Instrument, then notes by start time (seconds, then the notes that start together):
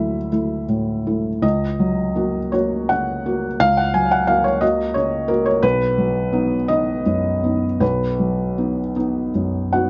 felt piano
Already playing: D2 F#3 A3 E4 E5
0.31 A3 E4
0.68 A2
1.07 A3 E4
1.42 C#2 D#5
1.80 F#3
2.15 A#3 F#4
2.52 A#3 F#4 C#5
2.89 C#3 F#5
3.26 A#3 F#4
3.60 C#2 F5
3.77 F#5
3.94 F#3 G#5
4.11 F#5
4.27 A#3 F#4 F5
4.44 C#5
4.61 A#3 F#4 D#5
4.94 C#3 C#5
5.28 A#3 F#4 A#4
5.46 C#5
5.63 B1 B4
5.98 F#3
6.32 B3 D#4
6.68 B3 D#4 D#5
7.06 F#2
7.43 B3 D#4
7.80 B1 B4
8.19 F#3
8.58 B3 D#4
8.96 B3 D#4
9.35 F#2
9.73 B3 D#4 F#4 F#5